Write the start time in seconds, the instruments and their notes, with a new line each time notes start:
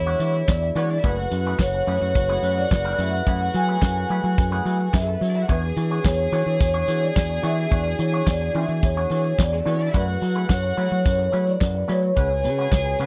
Already playing: fingered electric bass E2, french horn section E3 B3 D4 E4 F#4 G#4, string section E4 E5, vibraphone C#5
0.06 clean electric guitar G#3 D4 F#4 C#5
0.19 fingered electric bass E3, clean electric guitar G#3 D4 F#4 C#5, closed hi-hat, tambourine
0.34 muted clean electric guitar stroke, closed hi-hat
0.48 fingered electric bass E2, vibraphone D5, kick, snare, clap, tambourine
0.62 muted clean electric guitar stroke
0.75 fingered electric bass E3, clean electric guitar G#3 D4 F#4 C#5, string section B3 B4, closed hi-hat, tambourine
0.84 string section C#4 C#5
0.90 string section D4 D5, muted clean electric guitar stroke, closed hi-hat
0.98 string section E4 E5
1.03 fingered electric bass F#1, french horn section F#3 E4 G#4 A4 B4, clean electric guitar A3 E4 G#4 B4, string section F#4 F#5, vibraphone B4, kick, closed hi-hat
1.18 muted clean electric guitar stroke, closed hi-hat
1.31 fingered electric bass F#2, muted clean electric guitar stroke, closed hi-hat, tambourine
1.46 clean electric guitar A3 E4 G#4 B4, closed hi-hat
1.59 fingered electric bass F#1, vibraphone C#5, kick, snare, clap, tambourine
1.74 muted clean electric guitar stroke
1.86 fingered electric bass F#2, clean electric guitar A3 E4 G#4 B4, open hi-hat
2.01 fingered electric bass F#2, muted clean electric guitar stroke, closed hi-hat
2.15 fingered electric bass F#1, vibraphone C#5, muted clean electric guitar stroke, kick, closed hi-hat, tambourine
2.29 clean electric guitar A3 E4 G#4 B4
2.43 fingered electric bass F#2, clean electric guitar A3 E4 G#4 B4, closed hi-hat, tambourine
2.57 vibraphone D5, muted clean electric guitar stroke, snare, closed hi-hat
2.71 fingered electric bass F#1, muted clean electric guitar stroke, kick, snare, clap, tambourine
2.85 clean electric guitar A3 E4 G#4 B4, closed hi-hat
2.98 fingered electric bass F#2, clean electric guitar A3 E4 G#4 B4, vibraphone E5, closed hi-hat, tambourine
3.13 muted clean electric guitar stroke, closed hi-hat
3.27 fingered electric bass F#2, clean electric guitar A3 E4 G#4 B4, vibraphone F#5, kick, closed hi-hat
3.41 muted clean electric guitar stroke
3.54 fingered electric bass F#3, vibraphone G#5, muted clean electric guitar stroke, closed hi-hat, tambourine
3.68 clean electric guitar A3 E4 G#4 B4, closed hi-hat
3.82 fingered electric bass F#2, muted clean electric guitar stroke, kick, snare, clap, tambourine
3.97 muted clean electric guitar stroke
4.09 fingered electric bass F#3, clean electric guitar A3 E4 G#4 B4, closed hi-hat
4.24 fingered electric bass F#3, muted clean electric guitar stroke, closed hi-hat
4.37 fingered electric bass F#2, muted clean electric guitar stroke, kick, closed hi-hat, tambourine
4.52 clean electric guitar A3 E4 G#4 B4, closed hi-hat
4.65 fingered electric bass F#3, clean electric guitar A3 E4 G#4 B4, closed hi-hat, tambourine
4.79 muted clean electric guitar stroke, closed hi-hat
4.93 fingered electric bass F#2, vibraphone E5, muted clean electric guitar stroke, kick, snare, clap, tambourine
5.01 string section G#3 G#4
5.07 string section A3 A4, muted clean electric guitar stroke, closed hi-hat
5.15 string section B3 B4
5.21 fingered electric bass F#3, string section C#4 C#5, open hi-hat, tambourine
5.29 string section D4 D5
5.34 string section E4 E5, muted clean electric guitar stroke, closed hi-hat
5.43 string section F#4 F#5
5.48 fingered electric bass E2, french horn section E3 B3 D4 E4 F#4, clean electric guitar D4 F#4 G#4 C#5, string section G#4 G#5, vibraphone B4, kick, closed hi-hat
5.76 fingered electric bass E3, muted clean electric guitar stroke, closed hi-hat, tambourine
5.90 clean electric guitar D4 F#4 G#4 C#5, closed hi-hat
6.04 fingered electric bass E2, vibraphone C#5, muted clean electric guitar stroke, kick, snare, clap, tambourine
6.19 muted clean electric guitar stroke, closed hi-hat
6.32 fingered electric bass E3, clean electric guitar D4 F#4 G#4 C#5, open hi-hat, tambourine
6.46 fingered electric bass E3, muted clean electric guitar stroke, closed hi-hat
6.60 fingered electric bass E2, vibraphone C#5, muted clean electric guitar stroke, kick, closed hi-hat, tambourine
6.74 clean electric guitar D4 F#4 G#4 C#5, closed hi-hat
6.87 fingered electric bass E3, clean electric guitar D4 F#4 G#4 C#5, closed hi-hat, tambourine
7.01 vibraphone D5, muted clean electric guitar stroke, snare, closed hi-hat
7.16 fingered electric bass E2, kick, snare, clap, tambourine
7.29 muted clean electric guitar stroke, closed hi-hat
7.43 fingered electric bass E3, clean electric guitar D4 F#4 G#4 C#5, vibraphone E5, closed hi-hat, tambourine
7.58 closed hi-hat
7.71 fingered electric bass E2, clean electric guitar D4 F#4 G#4 C#5, vibraphone D5, kick, closed hi-hat
7.86 muted clean electric guitar stroke
7.98 fingered electric bass E3, vibraphone C#5, muted clean electric guitar stroke, closed hi-hat, tambourine
8.13 clean electric guitar D4 F#4 G#4 C#5, closed hi-hat
8.27 fingered electric bass E2, vibraphone D5, muted clean electric guitar stroke, kick, snare, clap, tambourine
8.41 muted clean electric guitar stroke, closed hi-hat
8.54 fingered electric bass E3, clean electric guitar D4 F#4 G#4 C#5, vibraphone E5, open hi-hat
8.69 fingered electric bass E3, muted clean electric guitar stroke, closed hi-hat
8.82 fingered electric bass E2, vibraphone C#5, muted clean electric guitar stroke, kick, closed hi-hat, tambourine
8.97 clean electric guitar D4 F#4 G#4 C#5, closed hi-hat
9.10 fingered electric bass E3, clean electric guitar D4 F#4 G#4 C#5, closed hi-hat, tambourine
9.24 muted clean electric guitar stroke, closed hi-hat
9.39 fingered electric bass E2, vibraphone D5, kick, snare, clap, tambourine
9.52 string section G#3 G#4, muted clean electric guitar stroke
9.60 string section A3 A4
9.65 fingered electric bass E3, string section B3 B4, clean electric guitar D4 F#4 G#4 C#5, closed hi-hat, tambourine
9.73 string section C#4 C#5
9.79 string section D4 D5, muted clean electric guitar stroke, closed hi-hat
9.88 string section E4 E5
9.94 fingered electric bass F#2, french horn section F#3 E4 A4 B4, clean electric guitar A3 E4 G#4 B4, string section F#4 F#5, vibraphone B4, kick, closed hi-hat, tambourine
10.07 muted clean electric guitar stroke
10.21 fingered electric bass F#3, muted clean electric guitar stroke, closed hi-hat, tambourine
10.35 clean electric guitar A3 E4 G#4 B4, closed hi-hat
10.49 fingered electric bass F#2, vibraphone C#5, muted clean electric guitar stroke, kick, snare, clap, tambourine
10.63 muted clean electric guitar stroke
10.77 fingered electric bass F#3, clean electric guitar A3 E4 G#4 B4, open hi-hat, tambourine
10.91 fingered electric bass F#3, muted clean electric guitar stroke, closed hi-hat
11.04 fingered electric bass F#2, vibraphone C#5, muted clean electric guitar stroke, kick, closed hi-hat, tambourine
11.18 muted clean electric guitar stroke, closed hi-hat
11.32 fingered electric bass F#3, clean electric guitar A3 E4 G#4 B4, closed hi-hat, tambourine
11.46 vibraphone D5, muted clean electric guitar stroke, snare, closed hi-hat
11.61 fingered electric bass F#2, kick, snare, clap, tambourine
11.74 muted clean electric guitar stroke
11.88 fingered electric bass F#3, clean electric guitar A3 E4 G#4 B4, vibraphone C#5, closed hi-hat, tambourine
12.02 muted clean electric guitar stroke, closed hi-hat
12.16 fingered electric bass C#2, french horn section C#3 C#4 F#4, clean electric guitar G#3 C#4 F#4 B4, string section G#4 G#5, kick, closed hi-hat
12.30 muted clean electric guitar stroke
12.44 fingered electric bass C#3, muted clean electric guitar stroke, closed hi-hat, tambourine
12.58 clean electric guitar G#3 C#4 F#4 B4, closed hi-hat
12.72 fingered electric bass C#2, muted clean electric guitar stroke, kick, snare, clap, tambourine
12.86 muted clean electric guitar stroke
12.99 fingered electric bass C#3, clean electric guitar G#3 C#4 F#4 B4, closed hi-hat, tambourine